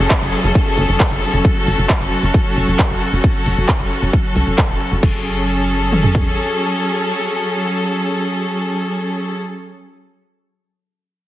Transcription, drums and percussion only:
0, 0, Header, 1, 2, 480
1, 0, Start_track
1, 0, Key_signature, 3, "minor"
1, 0, Tempo, 447761
1, 1551, Time_signature, 4, 2, 24, 8
1, 12088, End_track
2, 0, Start_track
2, 0, Title_t, "Drums"
2, 111, Note_on_c, 9, 36, 116
2, 111, Note_on_c, 9, 39, 112
2, 111, Note_on_c, 9, 42, 72
2, 218, Note_off_c, 9, 36, 0
2, 219, Note_off_c, 9, 39, 0
2, 219, Note_off_c, 9, 42, 0
2, 231, Note_on_c, 9, 42, 38
2, 339, Note_off_c, 9, 42, 0
2, 352, Note_on_c, 9, 46, 90
2, 459, Note_off_c, 9, 46, 0
2, 471, Note_on_c, 9, 42, 51
2, 579, Note_off_c, 9, 42, 0
2, 591, Note_on_c, 9, 36, 119
2, 591, Note_on_c, 9, 42, 73
2, 699, Note_off_c, 9, 36, 0
2, 699, Note_off_c, 9, 42, 0
2, 711, Note_on_c, 9, 42, 34
2, 819, Note_off_c, 9, 42, 0
2, 831, Note_on_c, 9, 46, 100
2, 939, Note_off_c, 9, 46, 0
2, 951, Note_on_c, 9, 42, 49
2, 1058, Note_off_c, 9, 42, 0
2, 1071, Note_on_c, 9, 36, 121
2, 1071, Note_on_c, 9, 39, 117
2, 1071, Note_on_c, 9, 42, 75
2, 1178, Note_off_c, 9, 36, 0
2, 1179, Note_off_c, 9, 39, 0
2, 1179, Note_off_c, 9, 42, 0
2, 1192, Note_on_c, 9, 42, 33
2, 1299, Note_off_c, 9, 42, 0
2, 1311, Note_on_c, 9, 46, 90
2, 1419, Note_off_c, 9, 46, 0
2, 1432, Note_on_c, 9, 42, 50
2, 1539, Note_off_c, 9, 42, 0
2, 1551, Note_on_c, 9, 36, 114
2, 1552, Note_on_c, 9, 42, 74
2, 1658, Note_off_c, 9, 36, 0
2, 1659, Note_off_c, 9, 42, 0
2, 1791, Note_on_c, 9, 46, 108
2, 1899, Note_off_c, 9, 46, 0
2, 1911, Note_on_c, 9, 42, 47
2, 2019, Note_off_c, 9, 42, 0
2, 2031, Note_on_c, 9, 36, 125
2, 2031, Note_on_c, 9, 39, 113
2, 2031, Note_on_c, 9, 42, 69
2, 2139, Note_off_c, 9, 36, 0
2, 2139, Note_off_c, 9, 39, 0
2, 2139, Note_off_c, 9, 42, 0
2, 2151, Note_on_c, 9, 42, 35
2, 2258, Note_off_c, 9, 42, 0
2, 2271, Note_on_c, 9, 46, 88
2, 2378, Note_off_c, 9, 46, 0
2, 2392, Note_on_c, 9, 42, 48
2, 2499, Note_off_c, 9, 42, 0
2, 2511, Note_on_c, 9, 36, 119
2, 2511, Note_on_c, 9, 42, 70
2, 2618, Note_off_c, 9, 42, 0
2, 2619, Note_off_c, 9, 36, 0
2, 2751, Note_on_c, 9, 46, 96
2, 2858, Note_off_c, 9, 46, 0
2, 2871, Note_on_c, 9, 42, 46
2, 2979, Note_off_c, 9, 42, 0
2, 2991, Note_on_c, 9, 36, 116
2, 2991, Note_on_c, 9, 39, 115
2, 2991, Note_on_c, 9, 42, 74
2, 3099, Note_off_c, 9, 36, 0
2, 3099, Note_off_c, 9, 39, 0
2, 3099, Note_off_c, 9, 42, 0
2, 3231, Note_on_c, 9, 46, 88
2, 3339, Note_off_c, 9, 46, 0
2, 3352, Note_on_c, 9, 42, 48
2, 3459, Note_off_c, 9, 42, 0
2, 3471, Note_on_c, 9, 36, 113
2, 3471, Note_on_c, 9, 42, 72
2, 3579, Note_off_c, 9, 36, 0
2, 3579, Note_off_c, 9, 42, 0
2, 3711, Note_on_c, 9, 46, 106
2, 3818, Note_off_c, 9, 46, 0
2, 3831, Note_on_c, 9, 42, 44
2, 3938, Note_off_c, 9, 42, 0
2, 3951, Note_on_c, 9, 36, 116
2, 3951, Note_on_c, 9, 39, 107
2, 3951, Note_on_c, 9, 42, 70
2, 4058, Note_off_c, 9, 39, 0
2, 4058, Note_off_c, 9, 42, 0
2, 4059, Note_off_c, 9, 36, 0
2, 4071, Note_on_c, 9, 42, 32
2, 4178, Note_off_c, 9, 42, 0
2, 4191, Note_on_c, 9, 46, 81
2, 4299, Note_off_c, 9, 46, 0
2, 4311, Note_on_c, 9, 42, 47
2, 4419, Note_off_c, 9, 42, 0
2, 4431, Note_on_c, 9, 36, 110
2, 4431, Note_on_c, 9, 42, 68
2, 4539, Note_off_c, 9, 36, 0
2, 4539, Note_off_c, 9, 42, 0
2, 4551, Note_on_c, 9, 42, 32
2, 4658, Note_off_c, 9, 42, 0
2, 4671, Note_on_c, 9, 46, 97
2, 4778, Note_off_c, 9, 46, 0
2, 4791, Note_on_c, 9, 42, 44
2, 4898, Note_off_c, 9, 42, 0
2, 4911, Note_on_c, 9, 36, 117
2, 4911, Note_on_c, 9, 39, 107
2, 5018, Note_off_c, 9, 36, 0
2, 5018, Note_off_c, 9, 39, 0
2, 5031, Note_on_c, 9, 42, 31
2, 5138, Note_off_c, 9, 42, 0
2, 5151, Note_on_c, 9, 46, 84
2, 5258, Note_off_c, 9, 46, 0
2, 5271, Note_on_c, 9, 42, 46
2, 5378, Note_off_c, 9, 42, 0
2, 5391, Note_on_c, 9, 36, 103
2, 5391, Note_on_c, 9, 49, 77
2, 5498, Note_off_c, 9, 36, 0
2, 5498, Note_off_c, 9, 49, 0
2, 6351, Note_on_c, 9, 47, 55
2, 6458, Note_off_c, 9, 47, 0
2, 6471, Note_on_c, 9, 43, 71
2, 6578, Note_off_c, 9, 43, 0
2, 6591, Note_on_c, 9, 36, 82
2, 6698, Note_off_c, 9, 36, 0
2, 12088, End_track
0, 0, End_of_file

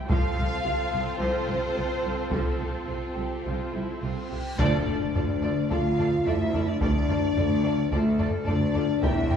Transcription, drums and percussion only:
0, 0, Header, 1, 2, 480
1, 0, Start_track
1, 0, Key_signature, -1, "minor"
1, 0, Tempo, 557621
1, 86, Time_signature, 4, 2, 24, 8
1, 8063, End_track
2, 0, Start_track
2, 0, Title_t, "Taiko and cinematic ensemble drums"
2, 82, Note_on_c, 9, 41, 84
2, 168, Note_off_c, 9, 41, 0
2, 1986, Note_on_c, 9, 41, 75
2, 2072, Note_off_c, 9, 41, 0
2, 3948, Note_on_c, 9, 41, 83
2, 4034, Note_off_c, 9, 41, 0
2, 4191, Note_on_c, 9, 43, 48
2, 4277, Note_off_c, 9, 43, 0
2, 4437, Note_on_c, 9, 43, 58
2, 4523, Note_off_c, 9, 43, 0
2, 4916, Note_on_c, 9, 41, 75
2, 5002, Note_off_c, 9, 41, 0
2, 5156, Note_on_c, 9, 43, 45
2, 5242, Note_off_c, 9, 43, 0
2, 5386, Note_on_c, 9, 43, 52
2, 5472, Note_off_c, 9, 43, 0
2, 5629, Note_on_c, 9, 43, 49
2, 5715, Note_off_c, 9, 43, 0
2, 5864, Note_on_c, 9, 41, 85
2, 5950, Note_off_c, 9, 41, 0
2, 6102, Note_on_c, 9, 43, 47
2, 6188, Note_off_c, 9, 43, 0
2, 6342, Note_on_c, 9, 43, 53
2, 6428, Note_off_c, 9, 43, 0
2, 6820, Note_on_c, 9, 41, 73
2, 6906, Note_off_c, 9, 41, 0
2, 7056, Note_on_c, 9, 43, 43
2, 7142, Note_off_c, 9, 43, 0
2, 7297, Note_on_c, 9, 43, 52
2, 7383, Note_off_c, 9, 43, 0
2, 7533, Note_on_c, 9, 43, 46
2, 7619, Note_off_c, 9, 43, 0
2, 7773, Note_on_c, 9, 41, 85
2, 7859, Note_off_c, 9, 41, 0
2, 8010, Note_on_c, 9, 43, 47
2, 8063, Note_off_c, 9, 43, 0
2, 8063, End_track
0, 0, End_of_file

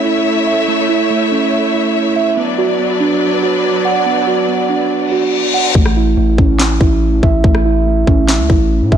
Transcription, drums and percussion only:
0, 0, Header, 1, 2, 480
1, 0, Start_track
1, 0, Tempo, 422535
1, 772, Time_signature, 4, 2, 24, 8
1, 10196, End_track
2, 0, Start_track
2, 0, Title_t, "Drums"
2, 6532, Note_on_c, 9, 36, 120
2, 6646, Note_off_c, 9, 36, 0
2, 6653, Note_on_c, 9, 37, 93
2, 6767, Note_off_c, 9, 37, 0
2, 7252, Note_on_c, 9, 36, 91
2, 7365, Note_off_c, 9, 36, 0
2, 7491, Note_on_c, 9, 38, 105
2, 7495, Note_on_c, 9, 39, 85
2, 7605, Note_off_c, 9, 38, 0
2, 7609, Note_off_c, 9, 39, 0
2, 7733, Note_on_c, 9, 36, 95
2, 7846, Note_off_c, 9, 36, 0
2, 8213, Note_on_c, 9, 36, 90
2, 8326, Note_off_c, 9, 36, 0
2, 8453, Note_on_c, 9, 36, 115
2, 8566, Note_off_c, 9, 36, 0
2, 8573, Note_on_c, 9, 37, 95
2, 8687, Note_off_c, 9, 37, 0
2, 9172, Note_on_c, 9, 36, 91
2, 9285, Note_off_c, 9, 36, 0
2, 9411, Note_on_c, 9, 38, 104
2, 9415, Note_on_c, 9, 39, 83
2, 9525, Note_off_c, 9, 38, 0
2, 9529, Note_off_c, 9, 39, 0
2, 9653, Note_on_c, 9, 36, 97
2, 9766, Note_off_c, 9, 36, 0
2, 10133, Note_on_c, 9, 36, 90
2, 10196, Note_off_c, 9, 36, 0
2, 10196, End_track
0, 0, End_of_file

